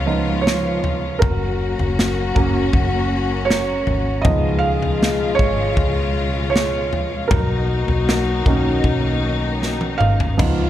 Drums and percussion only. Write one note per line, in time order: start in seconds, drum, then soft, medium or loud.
0.47 snare loud
0.84 floor tom medium
1.22 kick loud
1.22 floor tom loud
1.79 floor tom medium
1.99 snare loud
2.36 kick medium
2.36 floor tom medium
2.73 kick medium
2.73 floor tom medium
3.50 snare loud
3.87 floor tom medium
4.25 kick loud
4.25 floor tom loud
4.82 floor tom medium
5.03 snare loud
5.39 kick loud
5.77 kick medium
5.77 floor tom medium
6.56 snare loud
6.93 floor tom medium
7.31 kick loud
7.31 floor tom loud
7.88 floor tom medium
8.09 snare loud
8.46 kick loud
8.46 floor tom medium
8.84 kick medium
8.84 floor tom medium
9.63 snare medium
9.81 high tom medium
10.01 mid tom medium
10.20 floor tom medium
10.39 kick loud
10.39 floor tom loud
10.39 crash medium